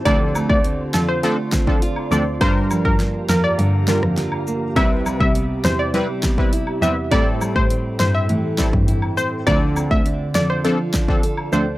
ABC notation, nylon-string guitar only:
X:1
M:4/4
L:1/8
Q:1/4=102
K:Ddor
V:1 name="Nylon-string guitar"
D, A, C F A, C F C | G,, F, _B, F D, B, F B, | C, G, B, E G, B, E B, | A,, G, C E E, C E C |
D, C D A F, D A D |]